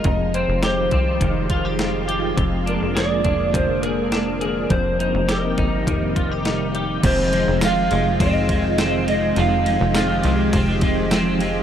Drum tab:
CC |--------|--------|--------|x-------|
RD |--------|--------|--------|xxxxxxxx|
HH |xxxxxxxx|xxxxxxxx|xxxxxxxx|--------|
TB |--------|--------|--------|--x---x-|
SD |--o---o-|--o---o-|--o---o-|--o---o-|
BD |o--ooo--|o--oo---|o--ooo--|o---oo--|

CC |--------|
RD |xxxxxxxx|
HH |--------|
TB |--x---x-|
SD |--o---o-|
BD |----oo--|